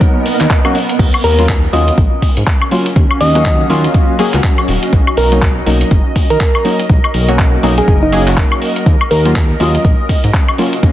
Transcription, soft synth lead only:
1.24 A#4
1.73 D#5
3.21 D#5
5.17 A#4
6.30 A#4
7.78 G#4
8.03 D#4
8.13 D#4
9.11 A#4
9.60 D#5

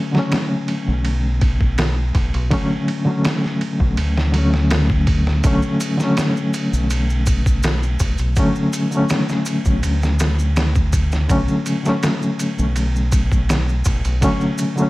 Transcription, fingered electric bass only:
0.88 B1
2.15 B1
2.34 B1
3.80 B1
3.98 D2
5.44 B1
6.73 B1
8.00 B1
8.19 B1
9.66 B1
9.83 D2
11.30 B1
12.59 B1
13.86 B1
14.05 B1

